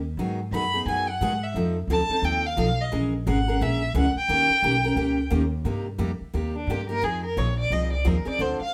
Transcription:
0.00 0.16 D#2 medium
0.17 0.51 G#2 medium
0.17 0.39 D#3 medium
0.17 0.39 F#3 medium
0.17 0.39 B3 medium
0.17 0.39 D#4 medium
0.17 0.40 G#4 medium
0.51 0.85 F#2 medium
0.51 0.64 D#3 medium
0.51 0.64 F#3 medium
0.51 0.64 B3 medium
0.51 0.64 D#4 medium
0.51 0.64 G#4 medium
0.51 0.84 B5 loud
0.74 0.87 B3 soft
0.74 0.87 D#4 soft
0.74 0.86 G#4 medium
0.86 1.19 F#2 medium
0.86 1.08 D#3 medium
0.86 1.08 F#3 medium
0.86 1.08 B3 medium
0.86 1.08 D#4 medium
0.86 1.08 G#4 medium
0.86 1.10 G#5 medium
1.08 1.45 F#5 medium
1.21 1.54 G#2 medium
1.21 1.32 D#3 medium
1.21 1.32 F#3 medium
1.21 1.32 B3 loud
1.21 1.32 D#4 medium
1.21 1.32 G#4 loud
1.43 1.56 E5 medium
1.54 1.87 F2 medium
1.54 1.76 F3 medium
1.54 1.76 C4 medium
1.54 1.76 D#4 medium
1.54 1.76 A4 medium
1.88 2.07 D2 medium
1.88 2.00 F3 medium
1.88 2.00 C4 medium
1.88 2.01 D#4 medium
1.88 2.01 A4 medium
1.88 2.26 A5 loud
2.09 2.23 C4 soft
2.09 2.23 D#4 medium
2.09 2.23 A4 medium
2.09 muted upright bass stroke soft
2.22 2.56 D#2 medium
2.22 2.44 F3 medium
2.22 2.44 C4 medium
2.22 2.45 D#4 medium
2.22 2.44 A4 medium
2.22 2.48 G5 loud
2.46 2.82 F5 medium
2.57 2.90 B1 medium
2.57 2.68 F3 medium
2.57 2.69 C4 medium
2.57 2.68 D#4 medium
2.57 2.68 A4 medium
2.81 2.93 D#5 medium
2.92 3.25 A#1 medium
2.92 3.12 E3 medium
2.92 3.12 G#3 medium
2.92 3.12 C#4 medium
2.92 3.12 G#4 medium
2.92 3.13 A#4 medium
3.27 3.59 G#1 medium
3.27 3.37 E3 medium
3.27 3.37 G#3 medium
3.27 3.37 C#4 medium
3.27 3.37 G#4 medium
3.27 3.38 A#4 medium
3.27 3.64 F#5 medium
3.48 3.60 C#4 medium
3.48 3.60 G#4 medium
3.48 3.60 A#4 medium
3.61 3.94 A#1 medium
3.61 3.81 E3 medium
3.61 3.81 G#3 medium
3.61 3.81 C#4 medium
3.61 3.82 G#4 medium
3.61 3.82 A#4 medium
3.61 3.96 E5 loud
3.94 4.13 C#2 medium
3.94 4.05 E3 medium
3.94 4.05 G#3 medium
3.94 4.06 C#4 medium
3.94 4.06 G#4 loud
3.94 4.06 A#4 medium
3.94 4.15 F#5 medium
4.15 5.28 G5 loud
4.15 muted upright bass stroke soft
4.28 4.48 D#2 medium
4.28 4.50 D#3 medium
4.28 4.49 A#3 medium
4.28 4.50 C#4 medium
4.28 4.50 G4 medium
4.28 4.50 A#4 medium
4.49 muted upright bass stroke soft
4.62 4.95 B1 medium
4.62 4.74 D#3 medium
4.62 4.74 A#3 medium
4.62 4.74 C#4 medium
4.62 4.74 G4 medium
4.62 4.74 A#4 medium
4.84 4.96 C#4 medium
4.84 4.96 G4 medium
4.84 4.96 A#4 medium
4.96 5.30 C#2 medium
4.96 5.17 D#3 medium
4.96 5.18 A#3 medium
4.96 5.18 C#4 medium
4.96 5.17 G4 medium
4.96 5.18 A#4 medium
5.30 5.64 D#2 medium
5.30 5.42 D#3 loud
5.30 5.42 A#3 medium
5.30 5.42 C#4 medium
5.30 5.42 G4 medium
5.30 5.42 A#4 medium
5.64 5.98 G2 medium
5.64 5.86 C3 medium
5.64 5.86 G3 medium
5.64 5.86 A#3 medium
5.64 5.86 D#4 medium
5.64 5.86 G4 medium
5.98 6.18 F2 medium
5.98 6.10 C3 medium
5.98 6.10 G3 medium
5.98 6.10 A#3 medium
5.98 6.10 D#4 medium
5.98 6.10 G4 medium
6.20 muted upright bass stroke soft
6.33 6.66 D#2 medium
6.33 6.54 C3 medium
6.33 6.55 G3 medium
6.33 6.54 A#3 medium
6.33 6.55 D#4 medium
6.33 6.55 G4 medium
6.55 6.72 D4 medium
6.67 7.01 G2 medium
6.67 6.80 C3 medium
6.67 6.80 G3 medium
6.67 6.80 A#3 medium
6.67 6.80 D#4 medium
6.67 6.89 G4 medium
6.71 6.81 G4 medium
6.89 7.01 A#3 medium
6.89 7.02 D#4 medium
6.89 7.02 G4 medium
6.89 7.05 A#4 loud
7.02 7.36 F2 medium
7.02 7.23 F3 medium
7.02 7.23 C4 medium
7.02 7.23 D#4 medium
7.02 7.23 G#4 medium
7.02 7.24 G#4 medium
7.25 7.39 A#4 medium
7.37 7.70 A#1 medium
7.37 7.48 F3 medium
7.37 7.48 C4 medium
7.37 7.48 D#4 medium
7.37 7.48 G#4 medium
7.37 7.58 C#5 medium
7.60 7.74 D5 loud
7.70 8.04 C2 medium
7.70 7.92 F3 medium
7.70 7.92 C4 medium
7.70 7.92 D#4 medium
7.70 7.92 G#4 medium
7.70 7.92 D#5 medium
7.93 8.09 D5 medium
8.05 8.25 D#2 medium
8.05 8.16 F3 medium
8.05 8.16 C4 medium
8.05 8.16 D#4 medium
8.05 8.16 G#4 loud
8.05 8.29 A#4 medium
8.25 8.39 C4 soft
8.25 8.39 D#4 medium
8.25 8.39 G#4 medium
8.25 8.42 D5 loud
8.25 muted upright bass stroke soft
8.39 8.58 D2 medium
8.39 8.60 D3 medium
8.39 8.60 F3 medium
8.39 8.60 C4 medium
8.39 8.60 D4 medium
8.39 8.60 A4 medium
8.39 8.61 C5 medium
8.60 8.74 F5 medium
8.60 muted upright bass stroke soft

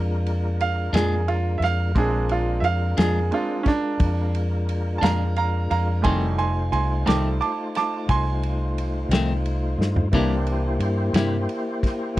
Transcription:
0.00 0.90 F2 medium
0.00 1.92 G#3 medium
0.00 1.92 D4 medium
0.00 1.92 F4 medium
0.00 1.92 A#4 medium
0.26 ride medium
0.60 0.94 F5 medium
0.60 ride medium
0.93 1.58 F2 medium
0.93 1.15 A#2 medium
0.93 1.15 F3 medium
0.93 1.15 G#3 medium
0.93 1.14 D4 medium
0.93 1.28 G#4 medium
0.93 snare loud
0.93 ride medium
1.28 1.61 F4 medium
1.28 ride medium
1.58 1.93 F2 medium
1.58 1.62 E5 medium
1.62 1.96 F5 medium
1.62 snare soft
1.62 ride medium
1.95 2.60 A#1 loud
1.95 2.94 G#3 soft
1.95 6.01 G#3 medium
1.95 2.95 C4 soft
1.95 6.01 D4 medium
1.95 2.95 D4 medium
1.95 6.01 F4 medium
1.95 2.30 G#4 medium
1.95 6.01 A#4 medium
1.95 kick loud
1.95 ride medium
2.29 2.64 F4 medium
2.29 ride medium
2.60 2.95 F2 medium
2.60 2.65 E5 medium
2.60 ride medium
2.65 2.98 F5 medium
2.97 3.30 F2 medium
2.97 3.20 A#2 medium
2.97 3.19 F3 medium
2.97 3.19 G#3 medium
2.97 3.19 D4 medium
2.97 3.32 G#4 medium
2.97 snare loud
2.97 ride medium
3.31 3.63 G#3 soft
3.31 3.63 C4 soft
3.31 3.63 D4 soft
3.31 3.67 F4 medium
3.31 ride medium
3.63 3.67 C#4 medium
3.63 kick medium
3.63 ride medium
3.68 4.33 D4 medium
3.68 snare soft
4.00 4.99 F2 medium
4.00 kick loud
4.00 ride medium
4.35 ride medium
4.69 ride medium
4.98 5.23 G#3 medium
4.98 5.23 D4 medium
4.98 5.03 A5 medium
5.02 5.67 F2 medium
5.02 5.24 A#2 medium
5.02 5.24 F3 medium
5.02 5.35 F5 medium
5.02 5.36 A#5 medium
5.02 snare loud
5.02 ride medium
5.36 5.69 F5 medium
5.36 5.70 A#5 medium
5.36 ride medium
5.70 6.03 F2 medium
5.70 6.03 F5 medium
5.70 6.04 A#5 medium
5.70 ride medium
6.02 6.69 F1 medium
6.02 6.25 F2 medium
6.02 6.25 D#3 medium
6.02 6.39 E3 medium
6.02 6.49 G3 soft
6.02 6.49 A3 soft
6.02 6.35 A3 medium
6.02 6.26 A3 medium
6.02 6.26 C4 medium
6.02 6.50 D#4 medium
6.02 6.39 F#4 medium
6.02 6.39 C#5 medium
6.02 6.36 G#5 medium
6.02 6.37 C6 medium
6.02 kick loud
6.02 ride medium
6.36 10.08 A3 medium
6.36 10.09 D#4 medium
6.36 10.09 F4 medium
6.36 10.08 C5 medium
6.36 6.71 G#5 medium
6.36 6.71 C6 medium
6.36 ride medium
6.72 7.04 C2 medium
6.72 7.04 G#5 medium
6.72 7.06 C6 medium
6.72 ride medium
7.06 7.39 C2 medium
7.06 7.28 F2 medium
7.06 7.28 D#3 medium
7.06 7.37 G3 soft
7.06 7.37 A3 soft
7.06 7.28 A3 medium
7.06 7.27 C4 medium
7.06 7.38 D#4 soft
7.06 7.39 A5 medium
7.06 7.39 D6 medium
7.06 snare loud
7.06 ride medium
7.41 7.73 A5 medium
7.41 7.74 D6 medium
7.41 ride medium
7.75 8.08 A5 medium
7.75 8.09 D6 medium
7.75 snare soft
7.75 ride medium
8.09 9.07 C2 medium
8.09 9.41 G#5 medium
8.09 9.42 C6 medium
8.09 kick loud
8.09 ride medium
8.43 ride medium
8.78 ride medium
9.09 9.74 C2 medium
9.09 9.32 A3 medium
9.09 9.32 C4 medium
9.09 ride medium
9.13 9.33 F2 medium
9.13 9.33 D#3 medium
9.13 snare loud
9.46 ride medium
9.78 10.10 G2 medium
9.78 snare medium
9.96 floor tom medium
10.12 10.77 C2 medium
10.12 10.34 C3 medium
10.12 12.20 E3 soft
10.12 10.34 G3 medium
10.12 12.20 A#3 medium
10.12 12.20 A#3 soft
10.12 10.34 A#3 medium
10.12 12.20 D4 medium
10.12 12.20 E4 medium
10.12 10.34 E4 medium
10.12 12.20 G4 medium
10.12 12.20 C5 medium
10.12 kick loud
10.12 ride medium
10.47 ride medium
10.79 11.12 G2 loud
10.79 ride medium
11.13 11.46 G2 medium
11.13 11.36 C3 medium
11.13 11.36 G3 medium
11.13 11.36 A#3 medium
11.13 11.36 E4 medium
11.13 snare loud
11.13 ride medium
11.49 ride medium
11.83 kick medium
11.83 snare soft
11.83 ride medium

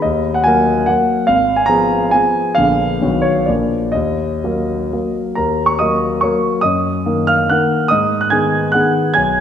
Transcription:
0.02 0.45 D#2 soft
0.02 0.35 D#5 medium
0.34 0.46 F#5 medium
0.44 0.85 F#3 soft
0.44 0.85 A#3 soft
0.44 0.85 A#4 medium
0.44 0.87 G#5 medium
0.86 1.24 F#3 soft
0.86 1.25 A#3 soft
0.86 1.25 A#4 soft
0.86 1.28 F#5 medium
1.27 1.70 G#1 soft
1.27 1.59 F5 medium
1.56 1.69 G#5 medium
1.66 2.10 F3 soft
1.66 2.10 B3 soft
1.66 2.10 G#4 medium
1.66 2.13 A#5 medium
2.11 2.53 F3 soft
2.11 2.53 B3 soft
2.11 2.54 G#4 soft
2.11 2.56 G#5 medium
2.55 3.01 A#1 soft
2.55 2.98 D3 soft
2.55 2.99 B3 soft
2.55 2.99 G#4 soft
2.55 3.25 F5 medium
3.01 3.47 B1 soft
3.01 3.45 D#3 soft
3.01 3.45 B3 soft
3.01 3.45 F#4 soft
3.22 3.47 C#5 medium
3.46 3.93 A#1 soft
3.46 3.91 F3 soft
3.46 3.91 A#3 soft
3.46 3.91 A#4 soft
3.46 3.94 D5 medium
3.92 4.42 D#2 soft
3.92 5.14 D#5 medium
4.44 4.89 F#3 soft
4.44 4.89 A#3 soft
4.44 4.89 A#4 soft
4.93 5.34 F#3 soft
4.93 5.34 A#3 soft
4.93 5.34 A#4 soft
5.35 5.79 D#2 soft
5.35 5.67 A#4 soft
5.35 5.69 A#5 medium
5.66 5.79 C#6 medium
5.79 6.20 F#3 soft
5.79 6.20 A#3 soft
5.79 6.20 A#4 soft
5.79 6.21 D#5 soft
5.79 6.23 D#6 medium
6.21 6.61 F#3 soft
6.21 6.61 A#3 soft
6.21 6.61 A#4 soft
6.21 6.62 C#5 soft
6.21 6.64 C#6 medium
6.61 7.06 F#2 soft
6.61 7.25 D#5 soft
6.61 7.28 D#6 medium
7.06 7.47 D#3 soft
7.06 7.47 A#3 soft
7.06 7.47 A#4 soft
7.27 7.49 F5 medium
7.27 7.50 F6 medium
7.50 7.88 D#3 soft
7.50 7.88 A#3 soft
7.50 7.88 A#4 soft
7.50 7.88 F#5 soft
7.50 7.91 F#6 medium
7.88 8.32 G#2 soft
7.88 8.20 D#5 medium
7.88 8.21 D#6 medium
8.21 8.32 F#6 medium
8.30 8.70 D#3 soft
8.30 8.70 B3 soft
8.30 8.71 G#4 soft
8.30 8.71 G#5 medium
8.30 8.74 G#6 medium
8.72 9.11 D#3 soft
8.72 9.11 B3 soft
8.72 9.11 G#4 soft
8.72 9.11 F#5 medium
8.72 9.13 F#6 medium
9.14 9.40 B1 soft
9.14 9.40 G#5 medium
9.14 9.40 G#6 medium

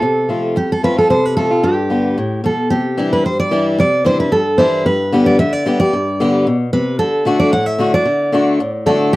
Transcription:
0.00 0.54 C3 medium
0.00 0.39 A4 medium
0.29 0.55 F3 medium
0.29 0.55 A3 medium
0.29 0.55 C4 medium
0.29 0.56 F4 medium
0.56 1.07 F2 medium
0.56 0.70 G4 medium
0.72 0.83 A4 medium
0.83 0.97 F3 medium
0.83 0.97 A3 medium
0.83 0.97 C4 medium
0.83 0.95 F4 medium
0.83 0.98 B4 medium
0.97 1.10 C4 soft
0.97 1.09 F4 medium
0.97 1.10 A4 medium
1.10 1.61 C3 medium
1.10 1.25 C5 medium
1.25 1.36 B4 medium
1.37 1.51 F3 medium
1.37 1.51 A3 medium
1.37 1.51 C4 medium
1.37 1.50 F4 medium
1.37 1.64 A4 medium
1.51 1.64 C4 soft
1.51 1.63 F4 medium
1.63 2.15 G2 medium
1.63 2.40 G4 medium
1.90 2.16 D3 medium
1.90 2.16 G3 medium
1.90 2.16 B3 medium
1.90 2.17 G4 medium
2.18 2.43 A2 medium
2.44 2.70 B2 medium
2.44 2.70 A4 medium
2.70 3.22 C3 medium
2.70 3.09 G4 medium
2.97 3.23 E3 medium
2.97 3.24 G3 medium
2.97 3.24 D4 medium
2.97 3.24 E4 medium
3.13 3.24 B4 medium
3.25 3.76 G2 medium
3.25 3.39 C5 medium
3.40 3.64 D5 medium
3.51 3.77 E3 medium
3.51 3.77 G3 loud
3.51 3.77 D4 medium
3.51 3.78 E4 loud
3.78 4.29 C3 medium
3.78 4.04 D5 medium
4.05 4.19 E3 medium
4.05 4.19 G3 medium
4.05 4.19 D4 loud
4.05 4.18 E4 loud
4.05 4.19 C5 medium
4.20 4.32 D4 soft
4.20 4.32 E4 medium
4.20 4.33 B4 medium
4.32 4.83 G2 medium
4.32 4.60 A4 medium
4.58 4.84 E3 medium
4.58 4.84 G3 medium
4.58 4.84 D4 medium
4.58 4.85 E4 loud
4.58 4.86 C5 medium
4.86 5.37 G2 medium
4.86 5.26 B4 medium
5.12 5.38 D3 loud
5.12 5.38 G3 medium
5.12 5.38 B3 medium
5.12 5.39 G4 loud
5.26 5.39 D5 medium
5.39 5.64 D3 medium
5.39 5.53 E5 loud
5.53 5.78 D5 loud
5.66 5.79 D3 medium
5.66 5.80 G3 medium
5.66 5.80 B3 medium
5.66 5.80 G4 loud
5.80 5.93 B3 soft
5.80 5.92 G4 medium
5.80 6.56 D5 medium
5.93 6.44 G2 medium
6.20 6.45 D3 medium
6.20 6.45 G3 medium
6.20 6.46 B3 medium
6.20 6.46 G4 loud
6.47 6.72 B2 medium
6.73 6.98 C3 medium
6.73 6.98 B4 medium
6.99 7.24 D3 medium
6.99 7.37 A4 medium
7.25 7.51 D3 medium
7.25 7.52 A3 medium
7.25 7.52 D4 loud
7.25 7.52 F#4 loud
7.40 7.52 D5 medium
7.52 8.04 A2 medium
7.52 7.66 F#5 loud
7.66 7.93 E5 loud
7.79 7.93 D3 medium
7.79 7.93 A3 medium
7.79 7.94 D4 medium
7.79 7.92 F#4 loud
7.93 8.06 D4 soft
7.93 8.05 F#4 medium
7.93 8.70 D5 loud
8.05 8.31 D3 medium
8.32 8.58 D3 medium
8.32 8.59 A3 medium
8.32 8.59 D4 loud
8.32 8.59 F#4 loud
8.60 9.11 A2 medium
8.86 9.12 D3 medium
8.86 9.12 A3 medium
8.86 9.12 D4 loud
8.86 9.12 F#4 loud
8.86 9.11 A4 medium
9.13 9.16 G4 medium

